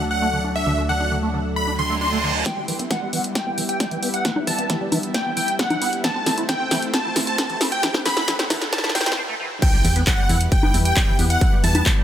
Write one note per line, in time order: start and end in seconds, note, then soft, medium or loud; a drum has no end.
0.00 0.64 D2 medium
0.00 2.42 F#3 medium
0.00 2.42 A3 medium
0.00 2.42 D4 medium
0.00 2.42 A4 medium
0.00 2.42 D5 medium
0.11 0.42 F#5 medium
0.22 0.28 A3 medium
0.33 0.39 D3 medium
0.44 0.50 D4 loud
0.56 0.79 E5 medium
0.67 2.44 D2 medium
0.67 0.73 D3 loud
0.78 0.82 A3 medium
0.89 0.93 D3 medium
0.89 1.12 F#5 medium
0.89 1.12 F#5 loud
1.00 1.06 D4 medium
1.11 1.18 D3 medium
1.23 1.29 A3 medium
1.34 1.40 D3 medium
1.56 1.72 B5 medium
1.56 reverse cymbal medium
1.67 1.71 D4 medium
1.79 1.82 D3 medium
1.79 1.94 C6 medium
1.90 1.96 A3 loud
2.01 2.07 D4 medium
2.01 2.32 C6 medium
2.12 2.18 A3 medium
2.23 2.33 D3 medium
2.46 2.52 E3 loud
2.46 6.00 G3 medium
2.46 6.00 B3 medium
2.46 9.13 E4 medium
2.46 6.00 G4 medium
2.46 7.79 E5 medium
2.46 2.77 G5 loud
2.46 kick loud
2.46 snare soft
2.46 closed hi-hat medium
2.46 riser medium
2.57 2.61 G3 medium
2.68 2.72 E3 medium
2.68 open hi-hat loud
2.79 2.85 B3 medium
2.79 closed hi-hat medium
2.91 2.97 E3 medium
2.91 3.22 F#5 loud
2.91 3.22 F#5 medium
2.91 kick loud
2.91 snare soft
2.91 closed hi-hat medium
3.02 3.08 G3 medium
3.13 3.19 E3 medium
3.13 open hi-hat loud
3.24 closed hi-hat medium
3.35 3.59 G5 medium
3.35 kick loud
3.35 snare medium
3.35 closed hi-hat medium
3.47 3.50 B3 medium
3.58 3.61 E3 medium
3.58 open hi-hat loud
3.69 4.00 G5 medium
3.69 4.00 G5 loud
3.69 closed hi-hat medium
3.80 3.86 G3 medium
3.80 kick loud
3.80 snare medium
3.80 closed hi-hat medium
3.91 3.97 E3 medium
3.91 closed hi-hat soft
4.02 4.09 B3 loud
4.02 open hi-hat loud
4.14 4.37 F#5 loud
4.14 closed hi-hat medium
4.25 4.31 E3 loud
4.25 kick loud
4.25 snare medium
4.25 closed hi-hat medium
4.36 4.40 G3 medium
4.36 high conga medium
4.47 4.51 E3 medium
4.47 4.71 A5 medium
4.47 kick medium
4.47 open hi-hat loud
4.58 4.65 B3 medium
4.58 closed hi-hat medium
4.70 4.76 E3 medium
4.70 kick loud
4.70 snare medium
4.70 closed hi-hat medium
4.81 4.87 G3 medium
4.92 4.98 E3 loud
4.92 open hi-hat loud
4.92 high conga medium
5.03 closed hi-hat medium
5.14 5.30 G5 medium
5.14 kick loud
5.14 snare medium
5.14 closed hi-hat medium
5.26 5.29 B3 medium
5.37 5.40 E3 medium
5.37 5.52 G5 medium
5.37 open hi-hat loud
5.48 closed hi-hat medium
5.59 5.65 G3 medium
5.59 5.90 F#5 medium
5.59 kick loud
5.59 snare medium
5.59 closed hi-hat medium
5.70 5.77 E3 medium
5.70 closed hi-hat soft
5.70 high conga medium
5.82 5.88 B3 loud
5.82 open hi-hat loud
5.93 closed hi-hat medium
6.04 6.10 E3 loud
6.04 9.14 A3 medium
6.04 9.14 C4 medium
6.04 9.14 C5 medium
6.04 6.35 A5 loud
6.04 kick loud
6.04 snare medium
6.04 closed hi-hat medium
6.15 6.19 C4 medium
6.26 6.30 E3 medium
6.26 snare medium
6.26 open hi-hat loud
6.38 6.44 E4 medium
6.38 closed hi-hat soft
6.49 6.55 E3 medium
6.49 6.80 G5 medium
6.49 6.80 G5 loud
6.49 kick loud
6.49 snare medium
6.49 closed hi-hat medium
6.60 6.66 C4 medium
6.71 6.77 E3 loud
6.71 snare medium
6.71 open hi-hat loud
6.82 closed hi-hat medium
6.94 7.17 A5 medium
6.94 kick loud
6.94 snare medium
6.94 closed hi-hat medium
7.05 7.08 E4 medium
7.16 7.20 E3 medium
7.16 snare medium
7.16 open hi-hat loud
7.27 7.58 A5 loud
7.27 7.58 A5 medium
7.27 closed hi-hat medium
7.38 7.44 C4 medium
7.38 kick loud
7.38 snare medium
7.38 closed hi-hat medium
7.50 7.56 E3 medium
7.50 closed hi-hat soft
7.61 7.67 E4 loud
7.61 snare medium
7.61 open hi-hat loud
7.72 7.95 G5 loud
7.72 closed hi-hat medium
7.83 7.89 E3 loud
7.83 9.16 F#5 medium
7.83 kick loud
7.83 snare medium
7.83 closed hi-hat medium
7.83 noise sweep medium
7.94 7.98 C4 medium
7.94 snare medium
7.94 high conga medium
8.05 8.09 E3 medium
8.05 8.29 B5 loud
8.05 kick medium
8.05 snare medium
8.05 open hi-hat loud
8.17 8.23 E4 medium
8.17 snare medium
8.17 closed hi-hat medium
8.28 8.34 E3 medium
8.28 kick loud
8.28 snare loud
8.28 closed hi-hat medium
8.39 8.45 C4 medium
8.39 snare medium
8.39 closed hi-hat soft
8.50 8.56 E3 loud
8.50 snare loud
8.50 open hi-hat loud
8.50 high conga medium
8.62 snare medium
8.62 closed hi-hat medium
8.73 8.88 A5 medium
8.73 kick loud
8.73 snare loud
8.73 closed hi-hat medium
8.78 snare medium
8.84 8.88 E4 medium
8.84 snare medium
8.89 snare medium
8.95 8.99 C4 medium
8.95 9.11 G5 medium
8.95 snare loud
8.95 open hi-hat loud
9.01 snare medium
9.06 9.15 C4 medium
9.06 snare medium
9.06 closed hi-hat medium
9.12 snare medium
9.17 9.21 C4 medium
9.29 9.35 A3 medium
9.40 9.49 E3 medium
9.62 9.68 E3 loud
9.62 12.04 G3 medium
9.62 12.04 B3 medium
9.62 12.04 E4 medium
9.62 12.04 G4 medium
9.62 12.04 B4 loud
9.62 9.93 G5 loud
9.62 kick loud
9.62 closed hi-hat medium
9.62 crash loud
9.62 sub drop medium
9.73 9.77 G3 medium
9.85 10.03 E2 loud
9.85 9.88 E3 medium
9.85 open hi-hat loud
9.96 10.02 B3 medium
9.96 closed hi-hat medium
10.07 10.13 E3 medium
10.07 10.38 F#5 loud
10.07 kick loud
10.07 clap loud
10.07 closed hi-hat medium
10.18 10.24 G3 medium
10.29 10.48 E2 medium
10.29 10.35 E3 loud
10.29 open hi-hat loud
10.41 closed hi-hat medium
10.52 10.75 G5 medium
10.52 kick loud
10.52 closed hi-hat medium
10.63 10.67 B3 medium
10.63 high conga medium
10.74 10.93 E2 loud
10.74 10.78 E3 medium
10.74 open hi-hat loud
10.85 11.16 G5 loud
10.85 11.16 G5 medium
10.85 closed hi-hat medium
10.97 11.03 G3 medium
10.97 kick loud
10.97 clap loud
10.97 closed hi-hat medium
11.08 11.14 E3 medium
11.19 11.38 E2 medium
11.19 11.25 B3 loud
11.19 open hi-hat loud
11.30 11.53 F#5 loud
11.30 closed hi-hat medium
11.41 11.47 E3 loud
11.41 kick loud
11.41 closed hi-hat medium
11.53 11.56 G3 medium
11.64 11.82 E2 loud
11.64 11.67 E3 medium
11.64 11.87 A5 loud
11.64 open hi-hat loud
11.75 11.81 B3 medium
11.75 closed hi-hat medium
11.75 high conga medium
11.86 11.92 E3 medium
11.86 kick loud
11.86 clap loud
11.86 closed hi-hat medium
11.97 12.03 G3 medium